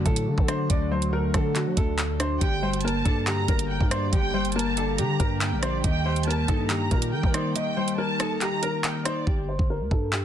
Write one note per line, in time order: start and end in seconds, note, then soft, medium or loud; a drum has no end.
0.00 0.70 D3 loud
0.00 5.80 D3 medium
0.00 0.27 F#3 medium
0.00 2.38 F#3 medium
0.00 0.48 A3 medium
0.00 2.38 A3 medium
0.00 0.47 D4 medium
0.00 2.38 F#4 loud
0.05 0.29 A2 loud
0.05 0.46 A4 medium
0.05 kick medium
0.05 closed hi-hat medium
0.16 closed hi-hat medium
0.27 0.37 D3 loud
0.38 0.69 D3 loud
0.38 kick medium
0.48 1.33 D4 medium
0.48 0.67 C5 medium
0.48 cross-stick loud
0.48 closed hi-hat medium
0.70 1.32 D2 loud
0.70 1.54 D3 loud
0.70 0.88 D5 medium
0.70 kick loud
0.70 closed hi-hat medium
0.91 1.98 F#3 medium
0.91 1.10 C5 medium
1.02 closed hi-hat medium
1.13 2.20 A3 medium
1.13 1.31 A#4 medium
1.34 1.68 D3 loud
1.34 2.18 D4 medium
1.34 1.53 A4 medium
1.34 kick loud
1.34 cross-stick loud
1.34 closed hi-hat medium
1.56 2.40 D3 medium
1.56 1.74 F#4 medium
1.56 clap medium
1.56 closed hi-hat medium
1.66 1.76 F#3 loud
1.77 2.39 D2 loud
1.77 2.18 A4 medium
1.77 kick medium
1.77 closed hi-hat medium
1.98 clap loud
1.98 closed hi-hat medium
2.20 2.41 D4 medium
2.20 2.39 C5 medium
2.20 cross-stick loud
2.20 closed hi-hat medium
2.41 3.03 G1 loud
2.41 3.26 D3 loud
2.41 9.23 G3 medium
2.41 5.81 A#3 medium
2.41 2.60 G4 medium
2.41 9.23 G4 medium
2.41 2.82 G5 loud
2.41 kick loud
2.41 closed hi-hat medium
2.63 3.70 G3 medium
2.63 2.81 C5 medium
2.73 closed hi-hat medium
2.81 3.91 A#3 medium
2.81 3.24 A5 loud
2.81 closed hi-hat medium
2.85 3.03 A#4 medium
2.85 closed hi-hat medium
3.05 3.47 G2 loud
3.05 3.90 D4 medium
3.05 3.24 A4 medium
3.05 kick medium
3.05 closed hi-hat medium
3.26 4.11 D3 medium
3.26 3.45 G4 medium
3.26 3.68 A#5 medium
3.26 clap loud
3.26 closed hi-hat medium
3.48 3.79 G1 loud
3.48 3.89 A#4 medium
3.48 kick medium
3.48 closed hi-hat medium
3.59 closed hi-hat medium
3.70 3.90 G5 medium
3.81 4.11 G2 loud
3.81 kick medium
3.91 4.76 D4 medium
3.91 4.10 C5 medium
3.91 4.11 D5 medium
3.91 cross-stick loud
3.91 closed hi-hat medium
4.12 5.00 G1 loud
4.12 4.97 D3 loud
4.12 4.31 G4 medium
4.12 4.53 G5 loud
4.12 kick loud
4.12 closed hi-hat medium
4.34 5.41 G3 medium
4.34 4.52 C5 medium
4.45 closed hi-hat soft
4.52 5.63 A#3 medium
4.52 4.74 A#4 medium
4.52 4.96 A5 loud
4.52 closed hi-hat medium
4.59 closed hi-hat medium
4.77 5.62 D4 medium
4.77 4.96 A4 medium
4.77 closed hi-hat medium
4.98 5.19 D3 loud
4.98 5.84 D3 medium
4.98 5.17 G4 medium
4.98 5.39 A#5 medium
4.98 closed hi-hat medium
5.20 5.53 G2 loud
5.20 5.60 A#4 medium
5.20 kick medium
5.20 closed hi-hat medium
5.41 5.62 G5 medium
5.41 clap loud
5.41 closed hi-hat medium
5.52 5.83 A#1 loud
5.63 5.84 D4 medium
5.63 5.81 C5 medium
5.63 5.83 D5 medium
5.63 cross-stick loud
5.63 closed hi-hat medium
5.84 6.46 D#2 loud
5.84 9.24 D#3 medium
5.84 6.69 D#3 loud
5.84 9.24 A#3 medium
5.84 6.03 D#5 medium
5.84 6.24 G5 loud
5.84 kick loud
5.84 closed hi-hat medium
6.05 7.13 G3 medium
6.05 6.24 C5 medium
6.16 closed hi-hat medium
6.23 7.34 A#3 medium
6.23 6.67 A5 loud
6.23 closed hi-hat medium
6.28 6.46 A#4 medium
6.28 closed hi-hat medium
6.48 6.90 G2 loud
6.48 7.33 D#4 medium
6.48 6.67 A4 medium
6.48 kick loud
6.48 closed hi-hat medium
6.69 7.54 D#3 medium
6.69 6.88 G4 medium
6.69 7.10 A#5 loud
6.69 clap loud
6.69 closed hi-hat medium
6.91 7.14 A#2 loud
6.91 7.32 A#4 medium
6.91 kick medium
6.91 closed hi-hat medium
7.02 closed hi-hat medium
7.13 7.23 D#3 loud
7.13 7.33 G5 medium
7.23 7.54 D#3 loud
7.23 kick medium
7.34 8.18 D#4 medium
7.34 7.53 C5 medium
7.34 7.55 D5 medium
7.34 cross-stick loud
7.34 closed hi-hat medium
7.55 8.40 D#3 medium
7.55 7.74 D#5 medium
7.55 7.96 G5 medium
7.55 closed hi-hat medium
7.77 8.84 G3 medium
7.77 7.95 C5 medium
7.88 closed hi-hat medium
7.98 9.05 A#3 medium
7.98 8.17 A#4 medium
7.98 8.39 A5 loud
8.19 9.04 D#4 medium
8.19 8.38 A4 medium
8.19 cross-stick loud
8.19 closed hi-hat medium
8.41 9.27 D#3 medium
8.41 8.60 G4 medium
8.41 8.81 A#5 loud
8.41 clap medium
8.41 closed hi-hat medium
8.63 9.03 A#4 medium
8.63 closed hi-hat medium
8.84 9.05 G5 medium
8.84 clap loud
8.84 closed hi-hat medium
9.05 9.27 D#4 medium
9.05 9.24 C5 medium
9.05 9.26 D5 medium
9.05 cross-stick loud
9.05 closed hi-hat medium
9.27 9.58 G1 loud
9.27 9.45 G4 medium
9.27 kick loud
9.49 9.67 C5 medium
9.59 9.82 G1 loud
9.59 kick medium
9.70 9.88 A#4 medium
9.81 9.91 D2 loud
9.91 10.25 G2 loud
9.91 10.10 A4 medium
9.91 kick medium
10.12 10.25 G4 medium
10.12 clap loud